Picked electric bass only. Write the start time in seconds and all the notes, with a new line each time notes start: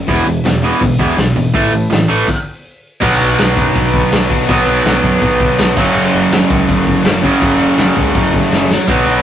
0.08 E1
0.26 E1
0.44 E1
0.81 G#1
0.99 E1
1.17 B1
1.36 G#1
1.55 A1
1.73 A2
1.91 A1
2.09 A1
3.02 B1
3.20 B1
3.39 B1
3.57 F#2
3.75 B1
4.12 B1
4.49 B1
4.67 B1
4.85 B1
5.04 F#2
5.22 B1
5.59 B1
5.77 F#1
5.95 F#1
6.14 F#1
6.31 F#1
6.50 C#2
6.69 F#1
7.04 F#1
7.42 F#1
7.59 F#1
7.78 F#1
7.97 C#2
8.16 F#1
8.52 F#1
8.88 B1
9.05 B1